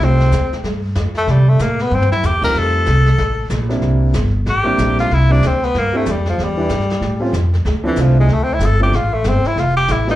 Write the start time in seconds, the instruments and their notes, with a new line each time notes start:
Already playing: grand piano G3 A3 C4 D#4 F4
0.00 upright bass C2, brush sweep, snare
0.04 tenor saxophone C4
0.20 snare
0.31 upright bass D#2, snare, hi-hat pedal
0.51 muted upright bass stroke, snare
0.63 upright bass G2, brush sweep, snare
0.95 upright bass F2, snare, hi-hat pedal
1.15 tenor saxophone A3, snare
1.27 upright bass C3, tenor saxophone G3, brush sweep, snare
1.49 tenor saxophone A3
1.59 upright bass A2, tenor saxophone A#3, snare, hi-hat pedal
1.79 tenor saxophone B3, snare
1.91 upright bass G2, tenor saxophone C4, floor tom
2.02 floor tom
2.12 tenor saxophone E4, floor tom
2.23 upright bass E2, tenor saxophone G4, snare, hi-hat pedal
2.41 grand piano G3 A3 C4 D#4 F4, tenor saxophone A#4, kick, crash
2.54 upright bass F2, brush sweep, snare
2.59 tenor saxophone A4
2.86 upright bass C2, snare, hi-hat pedal
3.05 snare
3.18 upright bass A1, brush sweep, snare
3.50 upright bass A#1, snare, hi-hat pedal
3.69 grand piano G3 A#3 C4 D4 E4, snare
3.82 upright bass C2, brush sweep, snare
4.13 upright bass G1, snare, hi-hat pedal
4.46 upright bass A1, tenor saxophone G4, brush sweep, snare
4.64 grand piano G3 A#3 C4 D4 E4
4.78 upright bass A#1, snare, hi-hat pedal
4.98 tenor saxophone F4, snare
5.11 upright bass C2, tenor saxophone E4, brush sweep, snare
5.29 grand piano G3 A#3 C4 D4 E4, tenor saxophone D4
5.42 upright bass D2, snare, hi-hat pedal
5.47 tenor saxophone C4
5.63 tenor saxophone B3, snare
5.74 upright bass G2, brush sweep, snare
5.79 tenor saxophone A#3
5.93 grand piano G3 A#3 C4 D4 E4
5.97 tenor saxophone A3
6.06 upright bass F2, snare, hi-hat pedal
6.11 tenor saxophone G3
6.26 tenor saxophone F3, snare
6.38 upright bass E2, brush sweep, snare
6.44 tenor saxophone G3
6.57 grand piano E3 G3 B3 D4 E4
6.69 upright bass G2, snare, hi-hat pedal
6.81 snare
6.90 snare
6.91 snare
7.01 upright bass A2, brush sweep, snare
7.20 grand piano G3 A3 C4 C#4 F4
7.33 upright bass F2, snare, hi-hat pedal
7.53 snare
7.65 upright bass D2, brush sweep, snare
7.83 tenor saxophone E3, grand piano F3 A3 C4 D4 E4
7.96 upright bass C2, snare, hi-hat pedal
8.02 tenor saxophone F3
8.20 tenor saxophone G#3
8.29 upright bass D2, brush sweep, snare
8.34 tenor saxophone A3
8.44 tenor saxophone C4
8.54 tenor saxophone E4
8.59 upright bass G1, snare, hi-hat pedal
8.66 tenor saxophone A4
8.80 grand piano F3 A3 C4 D4 E4, tenor saxophone G4
8.92 upright bass A1, brush sweep, snare
8.96 tenor saxophone F4
9.14 tenor saxophone A3
9.24 upright bass G1, snare, hi-hat pedal
9.28 tenor saxophone C4
9.44 tenor saxophone E4, muted upright bass stroke, snare
9.56 upright bass F1, tenor saxophone F4, brush sweep, snare
9.77 tenor saxophone G4
9.88 upright bass A1, tenor saxophone E4, snare, hi-hat pedal
10.07 grand piano G3 A3 B3 D4 F4, tenor saxophone D#4, snare